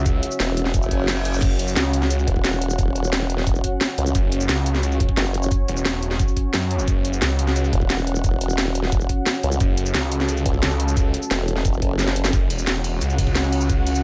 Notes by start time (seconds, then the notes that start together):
Already playing: C#2 C#4 F#4 E5
0.06 kick, closed hi-hat, shaker
0.23 closed hi-hat, shaker
0.31 shaker
0.40 E1, snare, closed hi-hat, shaker
0.57 closed hi-hat, shaker
0.66 snare
0.74 kick, closed hi-hat, reverse cymbal, shaker
0.83 shaker
0.91 F#1, kick, closed hi-hat
1.08 snare, closed hi-hat, shaker
1.17 shaker
1.25 closed hi-hat
1.34 shaker
1.42 F#1 F#5, kick, closed hi-hat, crash, shaker
1.59 closed hi-hat, shaker
1.68 shaker
1.76 C#2, snare, closed hi-hat, shaker
1.93 closed hi-hat, shaker
2.02 snare
2.10 closed hi-hat, shaker
2.19 shaker
2.27 E1, kick, closed hi-hat
2.36 kick
2.45 snare, closed hi-hat, shaker
2.53 shaker
2.62 closed hi-hat
2.70 shaker
2.79 kick, closed hi-hat, shaker
2.96 closed hi-hat, shaker
3.04 shaker
3.13 snare, closed hi-hat, shaker
3.30 closed hi-hat, shaker
3.38 snare
3.47 kick, closed hi-hat, shaker
3.55 shaker
3.64 kick, closed hi-hat
3.81 snare, closed hi-hat, shaker
3.89 shaker
3.98 C#2, closed hi-hat
4.06 shaker
4.15 F#1 C#5, kick, closed hi-hat, shaker
4.32 closed hi-hat, shaker
4.41 shaker
4.49 C#2, snare, closed hi-hat, shaker
4.66 closed hi-hat, shaker
4.75 snare
4.83 closed hi-hat, shaker
4.92 shaker
5.00 kick, closed hi-hat
5.09 kick
5.17 F#1, snare, closed hi-hat, shaker
5.26 shaker
5.34 closed hi-hat
5.43 shaker
5.51 kick, closed hi-hat, shaker
5.68 E1, closed hi-hat, shaker
5.77 shaker
5.85 snare, closed hi-hat, shaker
6.03 closed hi-hat, shaker
6.11 snare
6.20 kick, closed hi-hat, shaker
6.28 shaker
6.37 kick, closed hi-hat
6.54 F#2, snare, closed hi-hat, shaker
6.62 shaker
6.71 closed hi-hat
6.79 shaker
6.88 F#1 F#5, kick, closed hi-hat, shaker
7.05 closed hi-hat, shaker
7.13 shaker
7.22 C#2, snare, closed hi-hat, shaker
7.39 closed hi-hat, shaker
7.47 snare
7.56 closed hi-hat, shaker
7.64 shaker
7.73 E1, kick, closed hi-hat
7.81 kick
7.90 snare, closed hi-hat, shaker
7.98 shaker
8.07 closed hi-hat
8.16 shaker
8.24 kick, closed hi-hat, shaker
8.41 closed hi-hat, shaker
8.50 shaker
8.58 snare, closed hi-hat, shaker
8.75 closed hi-hat, shaker
8.84 snare
8.92 kick, closed hi-hat, shaker
9.01 shaker
9.09 kick, closed hi-hat
9.26 snare, closed hi-hat, shaker
9.35 shaker
9.43 C#2, closed hi-hat
9.52 shaker
9.60 F#1 A4, kick, closed hi-hat, shaker
9.77 closed hi-hat, shaker
9.86 shaker
9.95 C#2, snare, closed hi-hat, shaker
10.12 closed hi-hat, shaker
10.20 snare
10.29 closed hi-hat, shaker
10.37 shaker
10.46 C#2, kick, closed hi-hat
10.54 kick
10.63 C#2, snare, closed hi-hat, shaker
10.71 shaker
10.80 closed hi-hat
10.88 shaker
10.97 kick, closed hi-hat, shaker
11.14 closed hi-hat, shaker
11.22 shaker
11.31 E1, snare, closed hi-hat, shaker
11.48 closed hi-hat, shaker
11.57 snare
11.65 kick, closed hi-hat, shaker
11.74 shaker
11.82 F#1, kick, closed hi-hat
11.99 snare, closed hi-hat, shaker
12.08 snare, shaker
12.16 closed hi-hat
12.25 snare, shaker
12.33 F#1 C#4 F#4 F#5, kick, closed hi-hat, shaker
12.50 E1 F#4, closed hi-hat, ride bell, shaker
12.59 F#5, shaker
12.67 snare, closed hi-hat, shaker
12.84 closed hi-hat, ride bell, shaker
13.01 C#2, closed hi-hat, shaker
13.10 shaker
13.18 kick, closed hi-hat, ride bell
13.27 kick
13.35 snare, closed hi-hat, shaker
13.44 shaker
13.52 closed hi-hat, ride bell
13.61 shaker
13.70 kick, closed hi-hat, shaker
13.87 closed hi-hat, ride bell, shaker
13.95 shaker